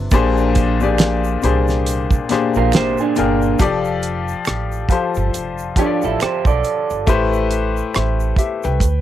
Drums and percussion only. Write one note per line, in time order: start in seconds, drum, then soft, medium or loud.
0.11 kick loud
0.11 closed hi-hat medium
0.11 shaker medium
0.37 shaker soft
0.55 kick medium
0.55 closed hi-hat medium
0.55 shaker soft
0.80 shaker soft
0.98 finger snap medium
0.98 snare loud
0.98 closed hi-hat medium
0.98 shaker medium
1.24 shaker soft
1.42 closed hi-hat medium
1.42 shaker soft
1.67 snare soft
1.67 shaker soft
1.86 closed hi-hat medium
1.86 shaker medium
2.11 kick medium
2.11 shaker medium
2.29 snare soft
2.29 closed hi-hat medium
2.29 shaker soft
2.54 shaker soft
2.72 finger snap medium
2.72 snare loud
2.72 closed hi-hat medium
2.72 shaker medium
2.98 shaker soft
3.16 closed hi-hat medium
3.16 shaker soft
3.42 shaker medium
3.59 kick loud
3.59 closed hi-hat medium
3.59 shaker medium
3.85 shaker soft
4.02 closed hi-hat medium
4.02 shaker soft
4.28 shaker soft
4.45 finger snap medium
4.45 cross-stick loud
4.45 closed hi-hat medium
4.45 shaker medium
4.72 shaker soft
4.89 kick medium
4.89 closed hi-hat medium
4.89 shaker soft
5.15 shaker soft
5.34 closed hi-hat medium
5.34 shaker medium
5.58 shaker soft
5.76 kick medium
5.76 cross-stick soft
5.76 closed hi-hat medium
5.76 shaker soft
6.02 shaker soft
6.20 finger snap medium
6.20 cross-stick medium
6.20 closed hi-hat medium
6.20 shaker medium
6.45 kick medium
6.45 shaker soft
6.64 closed hi-hat soft
6.64 shaker soft
6.90 shaker soft
7.07 kick medium
7.07 closed hi-hat medium
7.07 shaker medium
7.33 shaker soft
7.51 closed hi-hat medium
7.51 shaker soft
7.77 shaker soft
7.94 finger snap medium
7.94 cross-stick loud
7.94 closed hi-hat medium
7.94 shaker medium
8.20 shaker soft
8.36 kick medium
8.36 closed hi-hat medium
8.36 shaker soft
8.63 cross-stick soft
8.63 shaker soft
8.80 kick medium
8.80 closed hi-hat medium
8.80 shaker medium